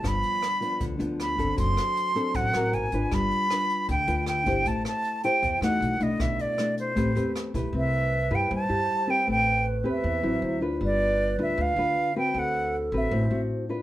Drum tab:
HH |xxxxxxxx|xxxxxxxx|xxxxxxxx|xxxxxxxx|
SD |r-r---r-|-r---r--|r-r---r-|-r---r--|
BD |o---o--o|o---o---|o---o--o|o---o---|

HH |xxxxxxxx|--------|--------|--------|
SD |r-r---r-|--------|--------|--------|
BD |o---o--o|--------|--------|--------|

HH |--------|
SD |--------|
BD |--------|